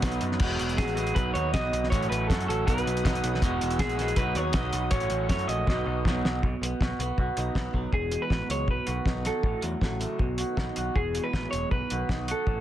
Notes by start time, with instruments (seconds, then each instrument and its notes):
Already playing: clean electric guitar B4, analog synth pad B4 F#5 D#6
0.02 picked electric bass B1, clean electric guitar B2 F#3 B3 D#4 F#4, kick, snare, closed hi-hat
0.12 closed hi-hat
0.21 picked electric bass F#2, closed hi-hat
0.32 snare
0.40 picked electric bass E1, clean electric guitar E2 B2 F#3 G#3 B3 F#4, analog synth pad G#4 E6, kick, crash
0.59 picked electric bass E1, closed hi-hat
0.69 closed hi-hat
0.77 picked electric bass A1, clean electric guitar F#3 G#3 B3 F#4 G#4, kick, snare, closed hi-hat
0.88 closed hi-hat
0.95 clean electric guitar F#3 G#3 B3 F#4, closed hi-hat
1.07 closed hi-hat
1.14 picked electric bass B1, clean electric guitar B2 F#3 B3 D#4 F#4 B4, analog synth pad B4, kick, closed hi-hat
1.18 analog synth pad D#6
1.34 picked electric bass D#2, clean electric guitar B3 D#4 F#4 C#5, closed hi-hat
1.52 picked electric bass B1, clean electric guitar B2 F#3 B3 D#4 F#4 D#5, kick, snare, closed hi-hat
1.72 picked electric bass B1, closed hi-hat
1.84 snare
1.90 picked electric bass A1, clean electric guitar A2 F#3 A3 C#4 F#4 C#5, analog synth pad F#5, kick, closed hi-hat
1.95 analog synth pad A4 C#6
2.03 closed hi-hat
2.10 picked electric bass A1, clean electric guitar B4, closed hi-hat
2.27 picked electric bass F#2, clean electric guitar F#3 A3 C#4 A4, kick, closed hi-hat
2.31 clean electric guitar F#4, snare
2.40 closed hi-hat
2.47 picked electric bass A1, clean electric guitar A3 C#4 F#4 A4, closed hi-hat
2.66 picked electric bass B1, clean electric guitar B2 F#3 B3 D#4 F#4 B4, analog synth pad B4 D#6, kick, closed hi-hat
2.78 closed hi-hat
2.84 picked electric bass B1, clean electric guitar B3 D#4 F#4, closed hi-hat
2.97 closed hi-hat
3.03 picked electric bass B1, clean electric guitar B2 F#3 B3 D#4 F#4, kick, snare, closed hi-hat
3.15 closed hi-hat
3.23 picked electric bass B1, closed hi-hat
3.35 snare
3.41 picked electric bass E1, clean electric guitar E2 B2 E3 G#3 B3 F#4, analog synth pad G#4 E6, kick, closed hi-hat
3.61 picked electric bass E1, closed hi-hat
3.70 closed hi-hat
3.79 picked electric bass A#1, clean electric guitar E3 G#3 G#4, kick, snare, closed hi-hat
3.89 closed hi-hat
3.97 clean electric guitar E3 G#3 B3 F#4, snare, closed hi-hat
4.08 closed hi-hat
4.16 picked electric bass B1, clean electric guitar B2 F#3 B3 D#4 F#4 B4, analog synth pad D#6, kick, closed hi-hat
4.20 analog synth pad B4
4.35 picked electric bass D#2, clean electric guitar B3 D#4 F#4 C#5, closed hi-hat
4.52 picked electric bass B1, clean electric guitar B2 F#3 B3 D#4 F#4 D#5, kick, snare, closed hi-hat
4.73 picked electric bass B1, closed hi-hat
4.91 picked electric bass A1, clean electric guitar A2 F#3 A3 C#4 F#4 C#5, analog synth pad A4 C#6, kick, closed hi-hat
5.00 closed hi-hat
5.10 picked electric bass A1, closed hi-hat
5.29 picked electric bass F#2, clean electric guitar F#3 A3 C#4 F#4 C#5, kick, snare, closed hi-hat
5.39 closed hi-hat
5.47 picked electric bass A#1, clean electric guitar A3 C#4 F#4 D#5, closed hi-hat
5.66 picked electric bass B1, clean electric guitar B2 F#3 B3 D#4 F#4, analog synth pad B4 D#6, kick, snare
5.86 picked electric bass B1, clean electric guitar B3 D#4 F#4
6.05 picked electric bass B1, clean electric guitar B2 F#3 B3 D#4 F#4, kick, snare
6.25 picked electric bass B1, snare
6.43 picked electric bass B1, clean electric guitar B2, kick
6.61 picked electric bass B1, clean electric guitar B3, closed hi-hat
6.80 picked electric bass B1, clean electric guitar F#4, kick, snare
6.99 picked electric bass B1, clean electric guitar B3, closed hi-hat
7.18 picked electric bass B1, clean electric guitar F#4, kick
7.37 picked electric bass B1, clean electric guitar D#4, closed hi-hat
7.55 picked electric bass B1, clean electric guitar B3, kick, snare
7.74 picked electric bass B1, clean electric guitar F#3, kick
7.93 picked electric bass E1, clean electric guitar E2 G#4, analog synth pad E3 G#3 F#4, kick
8.12 clean electric guitar B2, closed hi-hat
8.22 clean electric guitar B4
8.30 picked electric bass A1, clean electric guitar F#3, kick, snare
8.49 picked electric bass C#2, clean electric guitar G#3 C#5, closed hi-hat
8.68 picked electric bass B1, clean electric guitar B2 B4, analog synth pad D#3 B3 F#4, kick
8.87 picked electric bass B1, clean electric guitar F#4, closed hi-hat
9.05 picked electric bass B1, clean electric guitar D#4, kick, snare
9.25 clean electric guitar F#4 A4, snare, closed hi-hat
9.43 picked electric bass A1, clean electric guitar A2, analog synth pad C#3 A3, kick
9.61 picked electric bass E2, clean electric guitar F#3, closed hi-hat
9.81 picked electric bass A1, clean electric guitar F#3, kick, snare
10.00 clean electric guitar A3, closed hi-hat
10.19 picked electric bass B1, clean electric guitar B2, analog synth pad B3, kick
10.23 analog synth pad D#3
10.38 clean electric guitar F#4, closed hi-hat
10.57 picked electric bass B1, clean electric guitar D#4, kick, snare
10.76 picked electric bass B1, clean electric guitar F#4, closed hi-hat
10.95 picked electric bass E1, clean electric guitar E2 G#4, analog synth pad E3 G#3, kick
11.14 clean electric guitar B2, closed hi-hat
11.24 clean electric guitar B4
11.33 picked electric bass A1, clean electric guitar F#3, kick, snare
11.51 picked electric bass E1, clean electric guitar G#3 C#5, closed hi-hat
11.71 picked electric bass B1, clean electric guitar B2 B4, analog synth pad D#3 B3, kick
11.90 picked electric bass B1, clean electric guitar F#4, closed hi-hat
12.09 picked electric bass B1, clean electric guitar D#4, kick, snare
12.28 clean electric guitar F#4 A4, closed hi-hat
12.46 picked electric bass A1, clean electric guitar A2, analog synth pad C#3 A3, kick